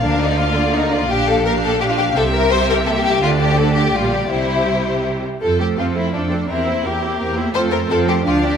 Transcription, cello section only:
\new Staff \with { instrumentName = "Cello section" } { \time 3/4 \key bes \major \tempo 4 = 169 d2. | \key f \major bes,2. | c2. | d2 bes,4 |
c2~ c8 r8 | r4 c'4 d'4 | c'4 bes2 | a4 c'4 d'4 | }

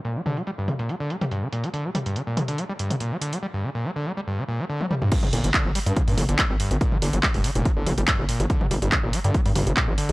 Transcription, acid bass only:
\new Staff \with { instrumentName = "Acid bass" } { \clef bass \time 4/4 \key g \phrygian \tempo 4 = 142 bes,16 g16 d16 g16 g16 g,16 d16 bes,16 g16 d16 g16 g16 g,16 d16 bes,16 g16 | d16 g16 g16 g,16 d16 bes,16 g16 d16 g16 g16 g,16 d16 bes,16 g16 d16 g16 | g16 g,16 d16 bes,16 g16 d16 g16 g16 g,16 d16 bes,16 g16 d16 g16 g16 g,16 | g,16 d16 bes,16 g16 d16 g16 g16 g,16 d16 bes,16 g16 d16 g16 g16 g,16 d16 |
bes,16 g16 d16 g16 g16 g,16 d16 bes,16 g16 d16 g16 g16 g,16 d16 bes,16 g16 | d16 g16 g16 g,16 d16 bes,16 g16 d16 g16 g16 g,16 d16 bes,16 g16 d16 g16 | }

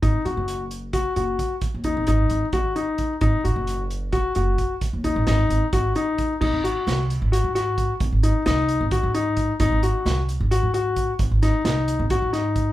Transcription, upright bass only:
\new Staff \with { instrumentName = "Upright bass" } { \clef bass \time 7/8 \key aes \mixolydian \tempo 4 = 132 aes,,16 r16 aes,,16 ges,,4.~ ges,,16 ges,,8 r8 | r16 ees,8 aes,,16 aes,,8 aes,,16 r16 aes,,8 r4 | aes,,16 r16 aes,,16 ges,,4.~ ges,,16 ges,,8 r8 | r16 ees,8 aes,,16 aes,,8 aes,,16 r16 aes,,8 r4 |
aes,,16 aes,,8 r16 c,8. aes,,8 aes,4~ aes,16 | aes,,16 aes,,8 r16 c,8. aes,,8 aes,4~ aes,16 | aes,,16 aes,,8 r16 c,8. aes,,8 aes,4~ aes,16 | aes,,16 aes,,8 r16 c,8. aes,,8 aes,4~ aes,16 | }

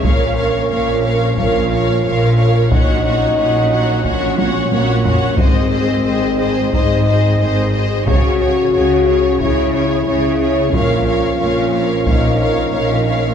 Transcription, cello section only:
\new Staff \with { instrumentName = "Cello section" } { \clef bass \time 4/4 \key bes \minor \tempo 4 = 90 bes,4 bes,4 bes,4 bes,4 | bes,4 bes,4 bes,4 bes,4 | aes,4 aes,4 aes,4 aes,4 | des4 des4 des4 des4 |
bes,4 bes,4 bes,4 bes,4 | }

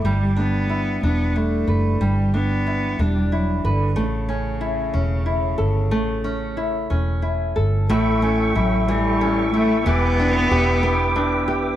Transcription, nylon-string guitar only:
\new Staff \with { instrumentName = "Nylon-string guitar" } { \time 6/8 \key a \mixolydian \tempo 4. = 61 g8 d'8 e'8 d'8 e'8 b'8 | g8 d'8 e'8 d'8 e'8 b'8 | a8 cis'8 e'8 cis'8 e'8 a'8 | a8 cis'8 e'8 cis'8 e'8 a'8 |
<a, e'>8 cis'8 e'8 e8 cis'8 e'8 | <e g'>8 d'8 g'8 b8 d'8 g'8 | }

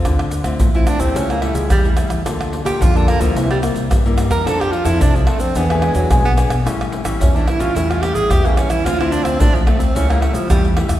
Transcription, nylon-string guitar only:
\new Staff \with { instrumentName = "Nylon-string guitar" } { \time 4/4 \key d \minor \tempo 4 = 109 << { <c' f' a'>8 r16 <a c' f'>8 <a c' f'>8 <g a e'>8. <g a e'>8 r16 <g a e'>8. | <bes f' a'>8. <bes f' a'>8 <bes f' a'>8 <g bes e'>8. <g bes e'>8. <g bes e'>8. | <c' d' a'>8 r16 <c' d' a'>8. <c' d' a'>8 <b d' gis'>16 <b d' gis'>8. <b d' gis'>16 r16 <b d' gis'>16 r16 | <g cis' e'>8. <g cis' e'>8 <g cis' e'>8 <g cis' e'>16 <g cis' e'>8 <g cis' e'>8. <g cis' e'>8. |
<a c' f'>16 <a c' f'>8. <a c' f'>8 <a c' f'>16 r16 <g a e'>16 <g a e'>8. <g a e'>8 <g a e'>16 r16 | } \\ { d4 a,4 cis4 cis4 | d4 d4 c4 g,4 | f4 c4 e4 b,4 | a,4 e4 a,4 e4 |
d4 a,4 cis4 cis4 | } >> }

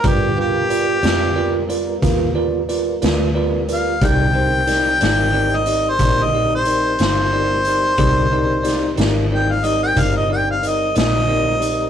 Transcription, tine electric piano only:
\new Staff \with { instrumentName = "Tine electric piano" } { \time 12/8 \key c \minor \tempo 4. = 60 <f' ais' b' d''>8 <f' ais' b' f''>8 <f' ais' b' d''>8 <f' ais' b' d''>8 <f' ais' b' d''>8 <f' ais' b' d''>8 <f' ais' b' f''>8 <f' ais' b' d''>8 <f' ais' b' d''>8 <f' ais' b' d''>8 <f' ais' b' d''>8 <f' ais' b' d''>8 | <ees' g' bes' d''>8 <ees' g' bes' c''>8 <ees' g' bes' d''>8 <ees' g' bes' d''>8 <ees' g' bes' d''>8 <ees' g' bes' d''>8 <ees' g' bes' d''>8 <ees' g' bes' d''>8 <ees' g' bes' d''>8 <ees' g' bes' f''>8 <ees' g' bes' d''>8 <ees' g' bes' d''>8 | <ees' g' bes' d''>8 <ees' g' bes' d''>8 <ees' g' bes' d''>8 <ees' g' bes' d''>8 <ees' g' bes' d''>8 <ees' g' bes' d''>8 <ees' g' bes' d''>8 <ees' g' bes' d''>8 <ees' g' bes' d''>8 <ees' g' bes' d''>8 <ees' g' bes' d''>8 <ees' g' bes' d''>8 | }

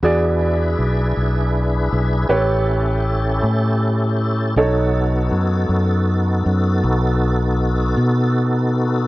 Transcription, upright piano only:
\new Staff \with { instrumentName = "Upright piano" } { \time 12/8 \key b \mixolydian \tempo 4. = 53 <fis' gis' d''>2. <g' b' cis''>2. | <dis' a' cis''>1. | }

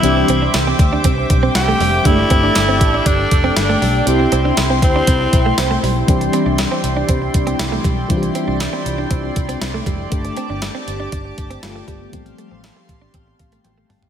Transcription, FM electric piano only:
\new Staff \with { instrumentName = "FM electric piano" } { \time 4/4 \key c \major \tempo 4 = 119 << { r1 | r1 | r1 | r1 |
r1 | r2. <a f'>8 <b g'>8~ | <b g'>8 r2 f''8 g''8 a''8 | } \\ { <e g c' d' g'>1 | <aes a d' g'>1 | <c' e' g'>1 | <e g c' d' g'>1 |
<e g c' d' f' g'>1 | <a d' g'>2. r4 | <f g a c' g'>1 | } >> }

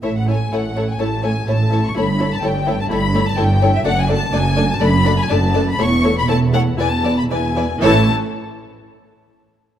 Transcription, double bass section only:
\new Staff \with { instrumentName = "Double bass section" } { \clef bass \time 4/4 \key a \major \tempo 4 = 122 a,,4 a,,4 a,,4 a,,4 | g,,4 g,,4 g,,4 g,,4 | fis,,4 fis,,4 fis,,4 fis,,4 | e,,4 e,,4 e,,4 e,,4 |
a,,8 r2. r8 | }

